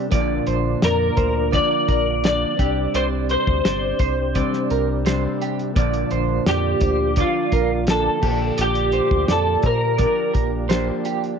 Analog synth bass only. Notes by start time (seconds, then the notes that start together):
0.12 A#1
0.47 A#1
0.83 F2
1.17 D2
1.89 A#1
2.59 C2
2.94 C2
3.48 D2
3.65 G1
4.00 C2
4.71 C2
5.76 A#1
6.12 A#1
6.46 F2
6.81 D2
7.52 A#1
8.23 A#1
8.58 A#1
9.11 D2
9.29 F2
9.64 A#2
10.35 A#1